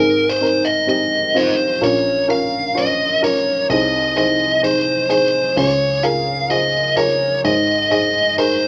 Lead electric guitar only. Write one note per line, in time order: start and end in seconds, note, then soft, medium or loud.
0.00 0.31 A#4 medium
0.30 0.66 C5 medium
0.65 0.86 D#5 medium
0.89 1.55 D#5 medium
1.37 1.83 C5 medium
1.84 2.26 C#5 medium
2.30 2.78 F5 medium
2.78 3.20 D#5 medium
3.24 3.67 C#5 medium
3.70 4.17 D#5 medium
4.18 4.60 D#5 medium
4.64 5.09 C5 medium
5.11 5.57 C5 medium
5.58 6.05 C#5 medium
6.03 6.47 F5 loud
6.50 6.96 D#5 medium
6.97 7.40 C#5 medium
7.45 7.91 D#5 medium
7.92 8.35 D#5 medium
8.38 8.68 C5 medium